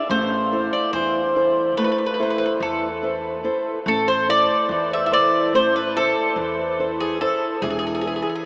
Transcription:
0.10 upright bass A1, steel-string acoustic guitar A3, bouzouki C5
0.52 steel-string acoustic guitar E4 A4 C5
0.73 bouzouki D5
0.93 upright bass E2, steel-string acoustic guitar E3, bouzouki C5
1.36 steel-string acoustic guitar E4 A4 C5
1.76 upright bass A1, steel-string acoustic guitar A3, bouzouki B4
1.84 bouzouki B4
1.92 bouzouki B4
1.98 bouzouki B4
2.06 bouzouki B4
2.14 bouzouki B4
2.19 steel-string acoustic guitar E4 A4 C5, bouzouki B4
2.30 bouzouki B4
2.38 bouzouki B4
2.46 bouzouki B4
2.60 upright bass E2, steel-string acoustic guitar E3, bouzouki A4
3.03 steel-string acoustic guitar E4 A4 C5
3.44 steel-string acoustic guitar E4 A4 C5
3.86 upright bass A1, steel-string acoustic guitar A3, bouzouki A4
4.08 bouzouki C5
4.28 steel-string acoustic guitar E4 A4 C5, bouzouki D5
4.69 upright bass E2, steel-string acoustic guitar E3
4.93 bouzouki E5
5.06 bouzouki E5
5.12 steel-string acoustic guitar E4 A4 C5, bouzouki D5
5.53 upright bass A1, steel-string acoustic guitar A3, bouzouki C5
5.76 bouzouki B4
5.96 steel-string acoustic guitar E4 A4 C5, bouzouki A4
6.36 upright bass E2, steel-string acoustic guitar E3
6.79 steel-string acoustic guitar E4 A4 C5
7.00 bouzouki G#4
7.21 steel-string acoustic guitar E4 A4 C5, bouzouki A4
7.62 upright bass E1, steel-string acoustic guitar E3, bouzouki G#4
7.70 bouzouki G#4
7.79 bouzouki G#4
7.87 bouzouki G#4
7.94 bouzouki G#4
8.01 steel-string acoustic guitar E4, bouzouki G#4
8.06 steel-string acoustic guitar G#4 B4, bouzouki G#4
8.16 bouzouki G#4
8.22 bouzouki G#4
8.29 bouzouki G#4
8.35 bouzouki G#4

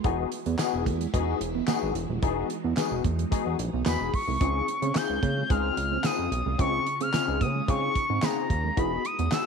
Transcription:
0.04 analog synth bass E1, string machine E3 G#3 E4, tine electric piano B3 D#4 F#4 G#4, clean electric guitar E4, kick, closed hi-hat
0.32 muted clean electric guitar stroke, closed hi-hat
0.46 analog synth bass E2, clean electric guitar B3, closed hi-hat
0.59 tine electric piano B3 D#4 F#4 G#4, snare, clap, closed hi-hat, tambourine
0.74 analog synth bass E1
0.86 analog synth bass E2, clean electric guitar A#3, kick, closed hi-hat
1.01 clean electric guitar G#3, closed hi-hat
1.13 analog synth bass E1, clean electric guitar G#3, tine electric piano B3 D#4 F#4 G#4, kick, closed hi-hat
1.41 analog synth bass E1, muted clean electric guitar stroke, closed hi-hat
1.55 clean electric guitar B3
1.67 clean electric guitar A#3, tine electric piano B3 D#4 F#4 G#4, snare, clap, closed hi-hat, tambourine
1.82 analog synth bass G#1
1.95 analog synth bass E1, muted clean electric guitar stroke, closed hi-hat
2.09 analog synth bass D#1, clean electric guitar G#3
2.22 analog synth bass E1, tine electric piano B3 D#4 F#4 G#4, string machine D#4, clean electric guitar E4, kick, closed hi-hat
2.50 muted clean electric guitar stroke, closed hi-hat
2.64 analog synth bass E2, clean electric guitar B3
2.77 tine electric piano B3 D#4 F#4 G#4, snare, clap, closed hi-hat, tambourine
2.91 analog synth bass E1
3.04 analog synth bass E2, clean electric guitar A#3, kick, closed hi-hat
3.19 clean electric guitar G#3, closed hi-hat
3.31 clean electric guitar G#3, tine electric piano B3 D#4 F#4 G#4, kick, closed hi-hat
3.46 analog synth bass E2
3.59 analog synth bass A#1, muted clean electric guitar stroke, closed hi-hat
3.73 analog synth bass B1, clean electric guitar B3
3.85 analog synth bass E2, clean electric guitar A#3, tine electric piano B3 D#4 F#4 G#4, analog synth lead B5, snare, clap, closed hi-hat, tambourine
4.00 analog synth bass E1
4.13 analog synth lead C#6, muted clean electric guitar stroke, kick, open hi-hat
4.28 analog synth bass C2, clean electric guitar G#3
4.40 analog synth bass C#2, string machine C#3 C4 F4, tine electric piano C4 D#4 F4 G#4, clean electric guitar C#4, kick, closed hi-hat
4.68 muted clean electric guitar stroke, closed hi-hat
4.82 analog synth bass C#3, clean electric guitar C4, closed hi-hat
4.95 tine electric piano C4 D#4 F4 G#4, analog synth lead G6, muted clean electric guitar stroke, snare, clap, closed hi-hat, tambourine
5.09 analog synth bass C#2
5.23 analog synth bass C#3, clean electric guitar A#3, kick, closed hi-hat
5.37 clean electric guitar G#3
5.50 analog synth bass C#2, clean electric guitar G#3, tine electric piano C4 D#4 F4 G#4, analog synth lead F6, kick, closed hi-hat
5.77 analog synth bass C#2, muted clean electric guitar stroke, closed hi-hat
5.92 clean electric guitar C4
6.04 clean electric guitar A#3, tine electric piano C4 D#4 F4 G#4, analog synth lead D#6, snare, clap, closed hi-hat, tambourine
6.19 analog synth bass F2
6.32 analog synth bass B1, muted clean electric guitar stroke, closed hi-hat
6.46 analog synth bass C2, clean electric guitar G#3
6.58 analog synth bass C#2, tine electric piano C4 D#4 F4 G#4, clean electric guitar C#4, string machine C#4, analog synth lead C#6, kick, closed hi-hat
6.86 muted clean electric guitar stroke, closed hi-hat
7.01 analog synth bass C#3, clean electric guitar C4, analog synth lead F6, closed hi-hat
7.13 tine electric piano C4 D#4 F4 G#4, snare, clap, closed hi-hat, tambourine
7.28 analog synth bass C#2
7.41 analog synth bass C#3, clean electric guitar A#3, analog synth lead D#6, kick, closed hi-hat
7.55 clean electric guitar G#3
7.68 analog synth bass C#3, clean electric guitar G#3, tine electric piano C4 D#4 F4 G#4, analog synth lead C#6, kick, closed hi-hat
7.95 muted clean electric guitar stroke, kick, closed hi-hat
8.10 analog synth bass G#2, clean electric guitar C4
8.22 clean electric guitar A#3, tine electric piano C4 D#4 F4 G#4, analog synth lead A#5, snare, clap, closed hi-hat, tambourine
8.50 analog synth bass D#2, muted clean electric guitar stroke, kick, closed hi-hat
8.64 clean electric guitar G#3
8.76 analog synth bass E1, string machine G#3 D#4 E4, tine electric piano B3 D#4 F#4 G#4, clean electric guitar E4, analog synth lead B5, kick, closed hi-hat
9.05 analog synth lead D#6, muted clean electric guitar stroke, closed hi-hat
9.19 analog synth bass E2, clean electric guitar B3, closed hi-hat
9.31 tine electric piano B3 D#4 F#4 G#4, analog synth lead E6, snare, clap, closed hi-hat, tambourine

